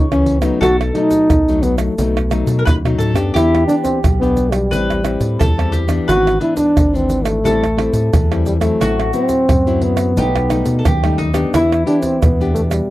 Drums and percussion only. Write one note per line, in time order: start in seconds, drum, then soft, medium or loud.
0.12 pandeiro soft
0.12 tamborim medium
0.12 shaker soft
0.26 pandeiro medium
0.42 pandeiro medium
0.42 tamborim medium
0.42 shaker medium
0.42 surdo soft
0.63 pandeiro medium
0.63 tamborim medium
0.63 shaker medium
0.63 surdo medium
0.81 pandeiro soft
0.81 tamborim medium
0.81 shaker soft
0.95 pandeiro medium
1.11 pandeiro medium
1.11 shaker medium
1.11 surdo soft
1.30 pandeiro medium
1.30 tamborim medium
1.30 shaker medium
1.30 surdo medium
1.48 pandeiro soft
1.48 shaker soft
1.63 pandeiro medium
1.63 shaker medium
1.78 pandeiro medium
1.78 tamborim medium
1.78 shaker medium
1.98 pandeiro medium
1.98 shaker medium
1.98 surdo medium
2.17 pandeiro soft
2.17 tamborim medium
2.17 shaker soft
2.17 surdo soft
2.31 pandeiro medium
2.31 tamborim medium
2.31 shaker medium
2.47 pandeiro medium
2.47 shaker medium
2.47 surdo soft
2.67 pandeiro medium
2.67 tamborim medium
2.67 shaker medium
2.67 surdo loud
2.85 pandeiro soft
2.85 tamborim medium
2.85 shaker soft
3.00 pandeiro medium
3.00 shaker medium
3.16 pandeiro medium
3.16 tamborim medium
3.16 shaker medium
3.16 surdo soft
3.36 pandeiro medium
3.36 tamborim medium
3.36 shaker medium
3.36 surdo medium
3.55 pandeiro soft
3.55 tamborim medium
3.55 shaker soft
3.69 pandeiro medium
3.69 shaker medium
3.85 pandeiro medium
3.85 shaker medium
3.85 surdo soft
4.04 pandeiro medium
4.04 tamborim medium
4.04 shaker medium
4.04 surdo medium
4.23 pandeiro soft
4.23 shaker soft
4.37 pandeiro medium
4.37 shaker medium
4.52 pandeiro medium
4.52 tamborim medium
4.52 shaker medium
4.73 pandeiro medium
4.73 shaker medium
4.73 surdo medium
4.90 pandeiro soft
4.90 tamborim medium
4.90 shaker soft
4.90 surdo soft
5.05 pandeiro medium
5.05 tamborim medium
5.05 shaker medium
5.21 pandeiro medium
5.21 shaker medium
5.21 surdo soft
5.41 pandeiro medium
5.41 tamborim medium
5.41 shaker medium
5.41 surdo loud
5.59 pandeiro soft
5.59 tamborim medium
5.59 shaker soft
5.73 pandeiro medium
5.73 shaker medium
5.89 pandeiro medium
5.89 tamborim medium
5.89 shaker medium
5.89 surdo soft
6.09 pandeiro medium
6.09 tamborim medium
6.09 shaker medium
6.09 surdo medium
6.27 pandeiro soft
6.27 tamborim medium
6.27 shaker soft
6.41 pandeiro medium
6.57 pandeiro medium
6.57 shaker medium
6.57 surdo soft
6.77 pandeiro medium
6.77 tamborim medium
6.77 shaker medium
6.77 surdo medium
6.95 pandeiro soft
6.95 shaker soft
7.10 pandeiro medium
7.10 shaker medium
7.25 pandeiro medium
7.25 tamborim medium
7.25 shaker medium
7.46 pandeiro medium
7.46 shaker medium
7.46 surdo medium
7.64 pandeiro soft
7.64 tamborim medium
7.64 shaker soft
7.64 surdo soft
7.78 pandeiro medium
7.78 tamborim medium
7.94 pandeiro medium
7.94 shaker medium
7.94 surdo soft
8.13 pandeiro medium
8.13 tamborim medium
8.13 shaker medium
8.13 surdo loud
8.32 pandeiro soft
8.32 tamborim medium
8.32 shaker soft
8.46 pandeiro medium
8.46 shaker medium
8.61 pandeiro medium
8.61 tamborim medium
8.61 shaker medium
8.61 surdo soft
8.81 pandeiro medium
8.81 tamborim medium
8.81 shaker medium
8.81 surdo medium
9.00 pandeiro soft
9.00 tamborim medium
9.00 shaker soft
9.13 pandeiro medium
9.13 shaker medium
9.29 pandeiro medium
9.29 shaker medium
9.29 surdo soft
9.49 pandeiro medium
9.49 tamborim medium
9.49 shaker medium
9.49 surdo medium
9.67 pandeiro soft
9.67 shaker soft
9.81 pandeiro medium
9.97 pandeiro medium
9.97 tamborim medium
9.97 shaker medium
10.17 pandeiro medium
10.17 shaker medium
10.17 surdo medium
10.36 pandeiro soft
10.36 tamborim medium
10.36 shaker soft
10.36 surdo soft
10.50 pandeiro medium
10.50 tamborim medium
10.50 shaker medium
10.66 pandeiro medium
10.66 shaker medium
10.66 surdo soft
10.85 pandeiro medium
10.85 tamborim medium
10.85 shaker medium
10.85 surdo loud
11.04 pandeiro soft
11.04 tamborim medium
11.04 shaker soft
11.19 pandeiro medium
11.19 surdo soft
11.34 pandeiro medium
11.34 tamborim medium
11.34 shaker medium
11.34 surdo soft
11.54 pandeiro medium
11.54 tamborim medium
11.54 shaker medium
11.54 surdo medium
11.72 pandeiro soft
11.72 tamborim medium
11.72 shaker soft
11.87 pandeiro medium
12.02 pandeiro medium
12.02 shaker medium
12.02 surdo soft
12.22 pandeiro medium
12.22 tamborim medium
12.22 shaker medium
12.22 surdo loud
12.41 pandeiro soft
12.41 shaker soft
12.56 pandeiro medium
12.56 shaker medium
12.71 pandeiro medium
12.71 tamborim medium
12.71 shaker medium